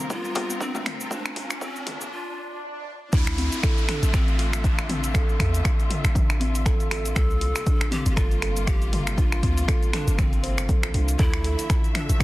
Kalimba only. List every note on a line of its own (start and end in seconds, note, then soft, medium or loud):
0.10 0.18 F4 medium
0.35 0.48 F4 medium
0.60 0.73 D4 medium
0.85 0.93 C4 loud
1.11 1.19 F4 medium
1.36 1.49 F4 medium
1.61 1.69 F4 medium
1.87 1.99 F4 medium
3.13 3.26 D4 medium
3.38 3.46 C4 loud
3.63 3.71 A4 loud
3.88 4.02 A4 medium
4.13 4.21 F4 medium
4.39 4.51 F4 medium
4.64 4.77 D4 medium
4.89 4.97 C4 loud
5.14 5.22 A4 loud
5.40 5.53 A4 medium
5.64 5.72 F4 medium
5.90 6.03 F4 medium
6.15 6.28 D4 medium
6.40 6.48 C4 loud
6.66 6.73 A4 loud
6.90 7.04 A4 medium
7.16 7.23 F4 medium
7.41 7.54 F4 medium
7.66 7.79 D4 medium
7.91 7.99 C4 loud
8.16 8.24 A4 loud
8.42 8.55 A4 medium
8.67 8.75 F4 medium
8.92 9.05 F4 medium
9.17 9.30 D4 medium
9.43 9.50 C4 loud
9.68 9.76 A4 loud
9.93 10.07 A4 medium
10.18 10.26 F4 medium
10.43 10.56 C5 medium
10.69 10.76 A4 medium
10.83 10.89 F4 medium
10.94 11.07 D4 medium
11.19 11.27 A4 loud
11.45 11.58 A4 medium
11.70 11.78 F4 medium
11.95 12.08 F4 medium
12.20 12.24 D4 medium